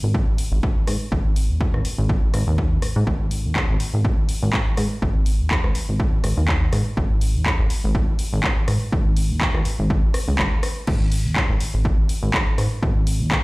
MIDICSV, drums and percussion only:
0, 0, Header, 1, 2, 480
1, 0, Start_track
1, 0, Tempo, 487805
1, 1103, Time_signature, 4, 2, 24, 8
1, 13221, End_track
2, 0, Start_track
2, 0, Title_t, "Drums"
2, 142, Note_on_c, 9, 36, 117
2, 240, Note_off_c, 9, 36, 0
2, 377, Note_on_c, 9, 46, 102
2, 476, Note_off_c, 9, 46, 0
2, 622, Note_on_c, 9, 36, 105
2, 720, Note_off_c, 9, 36, 0
2, 861, Note_on_c, 9, 37, 62
2, 861, Note_on_c, 9, 46, 90
2, 959, Note_off_c, 9, 37, 0
2, 959, Note_off_c, 9, 46, 0
2, 1101, Note_on_c, 9, 36, 115
2, 1199, Note_off_c, 9, 36, 0
2, 1340, Note_on_c, 9, 46, 104
2, 1439, Note_off_c, 9, 46, 0
2, 1580, Note_on_c, 9, 36, 102
2, 1679, Note_off_c, 9, 36, 0
2, 1713, Note_on_c, 9, 37, 56
2, 1811, Note_off_c, 9, 37, 0
2, 1819, Note_on_c, 9, 46, 88
2, 1918, Note_off_c, 9, 46, 0
2, 2060, Note_on_c, 9, 36, 118
2, 2158, Note_off_c, 9, 36, 0
2, 2300, Note_on_c, 9, 37, 58
2, 2300, Note_on_c, 9, 46, 99
2, 2398, Note_off_c, 9, 37, 0
2, 2398, Note_off_c, 9, 46, 0
2, 2541, Note_on_c, 9, 36, 103
2, 2639, Note_off_c, 9, 36, 0
2, 2778, Note_on_c, 9, 37, 59
2, 2778, Note_on_c, 9, 46, 90
2, 2876, Note_off_c, 9, 37, 0
2, 2876, Note_off_c, 9, 46, 0
2, 3021, Note_on_c, 9, 36, 110
2, 3119, Note_off_c, 9, 36, 0
2, 3258, Note_on_c, 9, 46, 98
2, 3356, Note_off_c, 9, 46, 0
2, 3501, Note_on_c, 9, 36, 97
2, 3503, Note_on_c, 9, 39, 106
2, 3599, Note_off_c, 9, 36, 0
2, 3601, Note_off_c, 9, 39, 0
2, 3739, Note_on_c, 9, 46, 86
2, 3838, Note_off_c, 9, 46, 0
2, 3982, Note_on_c, 9, 36, 110
2, 4080, Note_off_c, 9, 36, 0
2, 4219, Note_on_c, 9, 46, 97
2, 4317, Note_off_c, 9, 46, 0
2, 4461, Note_on_c, 9, 39, 112
2, 4462, Note_on_c, 9, 36, 100
2, 4560, Note_off_c, 9, 36, 0
2, 4560, Note_off_c, 9, 39, 0
2, 4697, Note_on_c, 9, 37, 58
2, 4697, Note_on_c, 9, 46, 89
2, 4796, Note_off_c, 9, 37, 0
2, 4796, Note_off_c, 9, 46, 0
2, 4942, Note_on_c, 9, 36, 109
2, 5040, Note_off_c, 9, 36, 0
2, 5176, Note_on_c, 9, 46, 98
2, 5275, Note_off_c, 9, 46, 0
2, 5421, Note_on_c, 9, 36, 96
2, 5421, Note_on_c, 9, 39, 107
2, 5519, Note_off_c, 9, 36, 0
2, 5520, Note_off_c, 9, 39, 0
2, 5551, Note_on_c, 9, 37, 59
2, 5649, Note_off_c, 9, 37, 0
2, 5658, Note_on_c, 9, 46, 86
2, 5757, Note_off_c, 9, 46, 0
2, 5901, Note_on_c, 9, 36, 108
2, 5999, Note_off_c, 9, 36, 0
2, 6138, Note_on_c, 9, 37, 59
2, 6138, Note_on_c, 9, 46, 95
2, 6236, Note_off_c, 9, 37, 0
2, 6236, Note_off_c, 9, 46, 0
2, 6380, Note_on_c, 9, 39, 112
2, 6381, Note_on_c, 9, 36, 98
2, 6478, Note_off_c, 9, 39, 0
2, 6479, Note_off_c, 9, 36, 0
2, 6618, Note_on_c, 9, 37, 63
2, 6618, Note_on_c, 9, 46, 84
2, 6717, Note_off_c, 9, 37, 0
2, 6717, Note_off_c, 9, 46, 0
2, 6860, Note_on_c, 9, 36, 106
2, 6958, Note_off_c, 9, 36, 0
2, 7098, Note_on_c, 9, 46, 95
2, 7196, Note_off_c, 9, 46, 0
2, 7340, Note_on_c, 9, 36, 93
2, 7343, Note_on_c, 9, 39, 107
2, 7439, Note_off_c, 9, 36, 0
2, 7441, Note_off_c, 9, 39, 0
2, 7578, Note_on_c, 9, 46, 82
2, 7676, Note_off_c, 9, 46, 0
2, 7820, Note_on_c, 9, 36, 108
2, 7919, Note_off_c, 9, 36, 0
2, 8058, Note_on_c, 9, 46, 96
2, 8156, Note_off_c, 9, 46, 0
2, 8301, Note_on_c, 9, 39, 114
2, 8302, Note_on_c, 9, 36, 95
2, 8400, Note_off_c, 9, 36, 0
2, 8400, Note_off_c, 9, 39, 0
2, 8539, Note_on_c, 9, 37, 64
2, 8539, Note_on_c, 9, 46, 84
2, 8638, Note_off_c, 9, 37, 0
2, 8638, Note_off_c, 9, 46, 0
2, 8782, Note_on_c, 9, 36, 109
2, 8880, Note_off_c, 9, 36, 0
2, 9019, Note_on_c, 9, 46, 94
2, 9117, Note_off_c, 9, 46, 0
2, 9262, Note_on_c, 9, 36, 97
2, 9263, Note_on_c, 9, 39, 111
2, 9360, Note_off_c, 9, 36, 0
2, 9361, Note_off_c, 9, 39, 0
2, 9392, Note_on_c, 9, 37, 63
2, 9490, Note_off_c, 9, 37, 0
2, 9498, Note_on_c, 9, 46, 83
2, 9596, Note_off_c, 9, 46, 0
2, 9743, Note_on_c, 9, 36, 108
2, 9841, Note_off_c, 9, 36, 0
2, 9979, Note_on_c, 9, 37, 65
2, 9979, Note_on_c, 9, 46, 96
2, 10078, Note_off_c, 9, 37, 0
2, 10078, Note_off_c, 9, 46, 0
2, 10222, Note_on_c, 9, 39, 121
2, 10223, Note_on_c, 9, 36, 97
2, 10321, Note_off_c, 9, 36, 0
2, 10321, Note_off_c, 9, 39, 0
2, 10460, Note_on_c, 9, 37, 65
2, 10460, Note_on_c, 9, 46, 87
2, 10558, Note_off_c, 9, 37, 0
2, 10558, Note_off_c, 9, 46, 0
2, 10699, Note_on_c, 9, 49, 74
2, 10701, Note_on_c, 9, 36, 117
2, 10798, Note_off_c, 9, 49, 0
2, 10800, Note_off_c, 9, 36, 0
2, 10939, Note_on_c, 9, 46, 103
2, 11037, Note_off_c, 9, 46, 0
2, 11180, Note_on_c, 9, 39, 116
2, 11181, Note_on_c, 9, 36, 96
2, 11279, Note_off_c, 9, 39, 0
2, 11280, Note_off_c, 9, 36, 0
2, 11419, Note_on_c, 9, 46, 89
2, 11517, Note_off_c, 9, 46, 0
2, 11660, Note_on_c, 9, 36, 112
2, 11759, Note_off_c, 9, 36, 0
2, 11899, Note_on_c, 9, 46, 99
2, 11997, Note_off_c, 9, 46, 0
2, 12140, Note_on_c, 9, 36, 103
2, 12143, Note_on_c, 9, 39, 121
2, 12239, Note_off_c, 9, 36, 0
2, 12242, Note_off_c, 9, 39, 0
2, 12381, Note_on_c, 9, 37, 66
2, 12381, Note_on_c, 9, 46, 88
2, 12479, Note_off_c, 9, 37, 0
2, 12479, Note_off_c, 9, 46, 0
2, 12620, Note_on_c, 9, 36, 118
2, 12719, Note_off_c, 9, 36, 0
2, 12860, Note_on_c, 9, 46, 107
2, 12958, Note_off_c, 9, 46, 0
2, 13101, Note_on_c, 9, 36, 102
2, 13103, Note_on_c, 9, 39, 120
2, 13200, Note_off_c, 9, 36, 0
2, 13201, Note_off_c, 9, 39, 0
2, 13221, End_track
0, 0, End_of_file